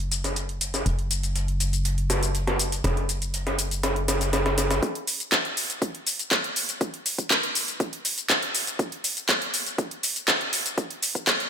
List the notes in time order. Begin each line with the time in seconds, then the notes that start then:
Already playing: F#1
0.12 closed hi-hat, shaker
0.24 snare, closed hi-hat, shaker
0.36 closed hi-hat, shaker
0.49 closed hi-hat
0.61 closed hi-hat, shaker
0.74 snare, closed hi-hat, shaker
0.86 F#1, closed hi-hat, shaker
0.99 closed hi-hat
1.11 closed hi-hat, shaker
1.23 closed hi-hat, shaker
1.35 closed hi-hat, shaker
1.48 closed hi-hat
1.60 closed hi-hat, shaker
1.73 closed hi-hat, shaker
1.85 closed hi-hat, shaker
1.98 closed hi-hat
2.10 snare, closed hi-hat, shaker
2.23 closed hi-hat, shaker
2.35 closed hi-hat, shaker
2.47 snare, closed hi-hat
2.59 closed hi-hat, shaker
2.72 closed hi-hat, shaker
2.84 F#1, snare, closed hi-hat, shaker
2.97 closed hi-hat
3.09 closed hi-hat, shaker
3.22 closed hi-hat, shaker
3.34 closed hi-hat, shaker
3.47 snare, closed hi-hat
3.59 closed hi-hat, shaker
3.71 closed hi-hat, shaker
3.83 snare, closed hi-hat, shaker
3.96 closed hi-hat
4.08 snare, closed hi-hat, shaker
4.21 snare, closed hi-hat, shaker
4.33 snare, closed hi-hat, shaker
4.46 snare, closed hi-hat
4.58 snare, closed hi-hat, shaker
4.71 snare, closed hi-hat, shaker
4.83 kick, closed hi-hat, shaker
4.95 closed hi-hat
5.07 open hi-hat, shaker
5.20 closed hi-hat, shaker
5.32 kick, clap, closed hi-hat, shaker
5.45 closed hi-hat
5.57 open hi-hat, shaker
5.70 closed hi-hat, shaker
5.82 kick, closed hi-hat, shaker
5.95 closed hi-hat
6.07 open hi-hat, shaker
6.19 closed hi-hat, shaker
6.31 kick, clap, closed hi-hat, shaker
6.44 closed hi-hat
6.56 open hi-hat, shaker
6.69 closed hi-hat, shaker
6.81 kick, closed hi-hat, shaker
6.94 closed hi-hat
7.06 open hi-hat, shaker
7.18 kick, closed hi-hat, shaker
7.30 kick, clap, closed hi-hat, shaker
7.43 closed hi-hat
7.55 open hi-hat, shaker
7.68 closed hi-hat, shaker
7.80 kick, closed hi-hat, shaker
7.93 closed hi-hat
8.05 open hi-hat, shaker
8.18 closed hi-hat, shaker
8.30 kick, clap, closed hi-hat, shaker
8.43 closed hi-hat
8.55 open hi-hat, shaker
8.67 closed hi-hat, shaker
8.79 kick, closed hi-hat, shaker
8.92 closed hi-hat
9.04 open hi-hat, shaker
9.17 closed hi-hat, shaker
9.29 kick, clap, closed hi-hat, shaker
9.42 closed hi-hat
9.54 open hi-hat, shaker
9.66 closed hi-hat, shaker
9.78 kick, closed hi-hat, shaker
9.91 closed hi-hat
10.03 open hi-hat, shaker
10.16 closed hi-hat, shaker
10.28 kick, clap, closed hi-hat, shaker
10.41 closed hi-hat
10.53 open hi-hat, shaker
10.66 closed hi-hat, shaker
10.78 kick, closed hi-hat, shaker
10.91 closed hi-hat
11.03 open hi-hat, shaker
11.15 kick, closed hi-hat, shaker
11.27 kick, clap, closed hi-hat, shaker
11.40 closed hi-hat